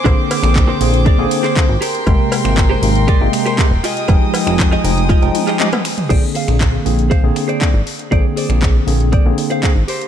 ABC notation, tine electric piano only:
X:1
M:4/4
L:1/16
Q:1/4=119
K:Bbmix
V:1 name="Tine electric piano"
[D,B,CA]3 [D,B,CA]3 [D,B,CA]3 [D,B,CA]3 [D,B,CA] z3 | [C,A,B,g]3 [C,A,B,g]3 [C,A,B,g]3 [C,A,B,g]3 [C,A,B,G] z3 | [F,A,Eg]3 [F,A,Eg]3 [F,A,Eg]3 [F,A,Eg]3 [F,A,EG] z3 | [D,B,CA]3 [D,B,CA]3 [D,B,CA]3 [D,B,CA]3 [D,B,CA] z3 |
[D,B,CA]3 [D,B,CA]3 [D,B,CA]3 [D,B,CA]3 [D,B,CA] z3 |]